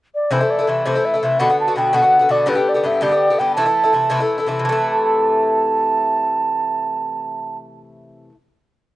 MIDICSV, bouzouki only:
0, 0, Header, 1, 2, 480
1, 0, Start_track
1, 0, Tempo, 361664
1, 413, Time_signature, 6, 3, 24, 8
1, 11890, End_track
2, 0, Start_track
2, 0, Title_t, "Bouzouki"
2, 0, Program_c, 0, 25
2, 407, Note_on_c, 0, 48, 77
2, 416, Note_on_c, 0, 52, 76
2, 418, Note_on_c, 0, 57, 68
2, 428, Note_on_c, 0, 64, 74
2, 521, Note_off_c, 0, 64, 0
2, 527, Note_off_c, 0, 57, 0
2, 536, Note_on_c, 0, 64, 47
2, 537, Note_off_c, 0, 48, 0
2, 541, Note_off_c, 0, 52, 0
2, 543, Note_on_c, 0, 57, 38
2, 560, Note_on_c, 0, 52, 35
2, 763, Note_off_c, 0, 64, 0
2, 779, Note_off_c, 0, 57, 0
2, 779, Note_on_c, 0, 64, 50
2, 790, Note_off_c, 0, 52, 0
2, 795, Note_on_c, 0, 57, 38
2, 806, Note_on_c, 0, 52, 38
2, 889, Note_off_c, 0, 52, 0
2, 892, Note_on_c, 0, 48, 48
2, 896, Note_off_c, 0, 57, 0
2, 897, Note_off_c, 0, 64, 0
2, 905, Note_on_c, 0, 52, 49
2, 912, Note_on_c, 0, 57, 50
2, 920, Note_on_c, 0, 64, 55
2, 1119, Note_off_c, 0, 48, 0
2, 1125, Note_off_c, 0, 52, 0
2, 1131, Note_off_c, 0, 57, 0
2, 1135, Note_on_c, 0, 48, 70
2, 1141, Note_on_c, 0, 52, 62
2, 1142, Note_off_c, 0, 64, 0
2, 1147, Note_on_c, 0, 57, 69
2, 1156, Note_on_c, 0, 64, 68
2, 1250, Note_off_c, 0, 64, 0
2, 1260, Note_off_c, 0, 48, 0
2, 1262, Note_off_c, 0, 57, 0
2, 1263, Note_off_c, 0, 52, 0
2, 1266, Note_on_c, 0, 64, 51
2, 1278, Note_on_c, 0, 57, 36
2, 1288, Note_on_c, 0, 52, 33
2, 1493, Note_off_c, 0, 64, 0
2, 1509, Note_on_c, 0, 64, 41
2, 1511, Note_off_c, 0, 57, 0
2, 1516, Note_off_c, 0, 52, 0
2, 1529, Note_on_c, 0, 57, 44
2, 1538, Note_on_c, 0, 52, 33
2, 1622, Note_off_c, 0, 64, 0
2, 1623, Note_off_c, 0, 52, 0
2, 1630, Note_on_c, 0, 48, 52
2, 1631, Note_off_c, 0, 57, 0
2, 1639, Note_on_c, 0, 52, 47
2, 1651, Note_on_c, 0, 57, 44
2, 1660, Note_on_c, 0, 64, 40
2, 1845, Note_off_c, 0, 48, 0
2, 1850, Note_off_c, 0, 52, 0
2, 1850, Note_on_c, 0, 47, 68
2, 1855, Note_on_c, 0, 50, 79
2, 1857, Note_off_c, 0, 57, 0
2, 1859, Note_off_c, 0, 64, 0
2, 1862, Note_on_c, 0, 59, 80
2, 1864, Note_on_c, 0, 66, 69
2, 1968, Note_off_c, 0, 66, 0
2, 1977, Note_off_c, 0, 47, 0
2, 1980, Note_off_c, 0, 50, 0
2, 1980, Note_off_c, 0, 59, 0
2, 1984, Note_on_c, 0, 66, 49
2, 1996, Note_on_c, 0, 59, 42
2, 2008, Note_on_c, 0, 50, 34
2, 2207, Note_off_c, 0, 66, 0
2, 2215, Note_off_c, 0, 59, 0
2, 2223, Note_on_c, 0, 66, 51
2, 2231, Note_off_c, 0, 50, 0
2, 2231, Note_on_c, 0, 59, 47
2, 2247, Note_on_c, 0, 50, 39
2, 2330, Note_off_c, 0, 50, 0
2, 2331, Note_on_c, 0, 47, 49
2, 2337, Note_off_c, 0, 59, 0
2, 2338, Note_off_c, 0, 66, 0
2, 2346, Note_on_c, 0, 50, 50
2, 2353, Note_on_c, 0, 59, 49
2, 2363, Note_on_c, 0, 66, 59
2, 2544, Note_off_c, 0, 47, 0
2, 2549, Note_off_c, 0, 50, 0
2, 2560, Note_off_c, 0, 66, 0
2, 2560, Note_on_c, 0, 47, 72
2, 2561, Note_off_c, 0, 59, 0
2, 2565, Note_on_c, 0, 50, 61
2, 2576, Note_on_c, 0, 59, 77
2, 2576, Note_on_c, 0, 66, 75
2, 2663, Note_off_c, 0, 66, 0
2, 2673, Note_off_c, 0, 59, 0
2, 2679, Note_on_c, 0, 66, 39
2, 2689, Note_on_c, 0, 59, 41
2, 2691, Note_off_c, 0, 47, 0
2, 2691, Note_off_c, 0, 50, 0
2, 2707, Note_on_c, 0, 50, 38
2, 2894, Note_off_c, 0, 66, 0
2, 2910, Note_on_c, 0, 66, 41
2, 2914, Note_off_c, 0, 59, 0
2, 2924, Note_off_c, 0, 50, 0
2, 2930, Note_on_c, 0, 59, 40
2, 2940, Note_on_c, 0, 50, 35
2, 3025, Note_off_c, 0, 50, 0
2, 3038, Note_off_c, 0, 59, 0
2, 3039, Note_on_c, 0, 47, 45
2, 3041, Note_off_c, 0, 66, 0
2, 3041, Note_on_c, 0, 50, 53
2, 3054, Note_on_c, 0, 59, 46
2, 3061, Note_on_c, 0, 66, 55
2, 3256, Note_off_c, 0, 50, 0
2, 3259, Note_off_c, 0, 47, 0
2, 3260, Note_off_c, 0, 59, 0
2, 3264, Note_on_c, 0, 43, 68
2, 3272, Note_on_c, 0, 50, 75
2, 3276, Note_on_c, 0, 59, 80
2, 3281, Note_off_c, 0, 66, 0
2, 3286, Note_on_c, 0, 67, 74
2, 3370, Note_off_c, 0, 67, 0
2, 3386, Note_on_c, 0, 67, 47
2, 3389, Note_off_c, 0, 59, 0
2, 3403, Note_off_c, 0, 43, 0
2, 3403, Note_off_c, 0, 50, 0
2, 3405, Note_on_c, 0, 59, 40
2, 3419, Note_on_c, 0, 50, 38
2, 3625, Note_off_c, 0, 67, 0
2, 3636, Note_off_c, 0, 59, 0
2, 3641, Note_on_c, 0, 67, 43
2, 3652, Note_on_c, 0, 59, 47
2, 3654, Note_off_c, 0, 50, 0
2, 3670, Note_on_c, 0, 50, 36
2, 3757, Note_off_c, 0, 50, 0
2, 3764, Note_on_c, 0, 43, 50
2, 3765, Note_off_c, 0, 67, 0
2, 3766, Note_off_c, 0, 59, 0
2, 3773, Note_on_c, 0, 50, 48
2, 3781, Note_on_c, 0, 59, 51
2, 3791, Note_on_c, 0, 67, 55
2, 3977, Note_off_c, 0, 43, 0
2, 3992, Note_off_c, 0, 50, 0
2, 3993, Note_off_c, 0, 59, 0
2, 3993, Note_on_c, 0, 43, 74
2, 4002, Note_off_c, 0, 67, 0
2, 4008, Note_on_c, 0, 50, 65
2, 4009, Note_on_c, 0, 59, 74
2, 4018, Note_on_c, 0, 67, 72
2, 4118, Note_off_c, 0, 67, 0
2, 4126, Note_off_c, 0, 43, 0
2, 4130, Note_off_c, 0, 59, 0
2, 4134, Note_off_c, 0, 50, 0
2, 4134, Note_on_c, 0, 67, 47
2, 4146, Note_on_c, 0, 59, 39
2, 4162, Note_on_c, 0, 50, 42
2, 4368, Note_off_c, 0, 67, 0
2, 4379, Note_off_c, 0, 59, 0
2, 4383, Note_on_c, 0, 67, 44
2, 4391, Note_off_c, 0, 50, 0
2, 4394, Note_on_c, 0, 59, 38
2, 4410, Note_on_c, 0, 50, 34
2, 4491, Note_off_c, 0, 50, 0
2, 4496, Note_off_c, 0, 67, 0
2, 4501, Note_off_c, 0, 59, 0
2, 4501, Note_on_c, 0, 43, 41
2, 4507, Note_on_c, 0, 50, 40
2, 4520, Note_on_c, 0, 59, 52
2, 4525, Note_on_c, 0, 67, 54
2, 4729, Note_off_c, 0, 43, 0
2, 4732, Note_off_c, 0, 50, 0
2, 4734, Note_on_c, 0, 48, 67
2, 4738, Note_off_c, 0, 59, 0
2, 4741, Note_off_c, 0, 67, 0
2, 4744, Note_on_c, 0, 52, 70
2, 4745, Note_on_c, 0, 57, 68
2, 4747, Note_on_c, 0, 64, 86
2, 4834, Note_off_c, 0, 64, 0
2, 4844, Note_off_c, 0, 57, 0
2, 4850, Note_on_c, 0, 64, 46
2, 4857, Note_off_c, 0, 48, 0
2, 4858, Note_off_c, 0, 52, 0
2, 4860, Note_on_c, 0, 57, 44
2, 4874, Note_on_c, 0, 52, 42
2, 5076, Note_off_c, 0, 64, 0
2, 5092, Note_on_c, 0, 64, 47
2, 5093, Note_off_c, 0, 57, 0
2, 5100, Note_off_c, 0, 52, 0
2, 5109, Note_on_c, 0, 57, 41
2, 5116, Note_on_c, 0, 52, 41
2, 5210, Note_off_c, 0, 64, 0
2, 5213, Note_on_c, 0, 48, 48
2, 5214, Note_off_c, 0, 52, 0
2, 5218, Note_off_c, 0, 57, 0
2, 5229, Note_on_c, 0, 52, 44
2, 5232, Note_on_c, 0, 57, 47
2, 5246, Note_on_c, 0, 64, 50
2, 5421, Note_off_c, 0, 48, 0
2, 5427, Note_off_c, 0, 52, 0
2, 5437, Note_off_c, 0, 57, 0
2, 5437, Note_on_c, 0, 48, 76
2, 5443, Note_off_c, 0, 64, 0
2, 5443, Note_on_c, 0, 52, 76
2, 5453, Note_on_c, 0, 57, 71
2, 5459, Note_on_c, 0, 64, 84
2, 5562, Note_off_c, 0, 64, 0
2, 5568, Note_off_c, 0, 48, 0
2, 5571, Note_off_c, 0, 52, 0
2, 5575, Note_off_c, 0, 57, 0
2, 5578, Note_on_c, 0, 64, 48
2, 5589, Note_on_c, 0, 57, 49
2, 5601, Note_on_c, 0, 52, 42
2, 5795, Note_off_c, 0, 64, 0
2, 5811, Note_on_c, 0, 64, 45
2, 5814, Note_off_c, 0, 57, 0
2, 5820, Note_off_c, 0, 52, 0
2, 5830, Note_on_c, 0, 57, 42
2, 5836, Note_on_c, 0, 52, 41
2, 5924, Note_off_c, 0, 52, 0
2, 5925, Note_on_c, 0, 48, 45
2, 5929, Note_off_c, 0, 64, 0
2, 5931, Note_off_c, 0, 57, 0
2, 5940, Note_on_c, 0, 52, 53
2, 5947, Note_on_c, 0, 57, 54
2, 5953, Note_on_c, 0, 64, 53
2, 6081, Note_off_c, 0, 48, 0
2, 6097, Note_on_c, 0, 48, 67
2, 6154, Note_off_c, 0, 52, 0
2, 6170, Note_on_c, 0, 52, 78
2, 6171, Note_off_c, 0, 57, 0
2, 6174, Note_off_c, 0, 64, 0
2, 6223, Note_on_c, 0, 57, 86
2, 6269, Note_on_c, 0, 64, 77
2, 11002, Note_off_c, 0, 48, 0
2, 11039, Note_off_c, 0, 52, 0
2, 11066, Note_off_c, 0, 57, 0
2, 11089, Note_off_c, 0, 64, 0
2, 11890, End_track
0, 0, End_of_file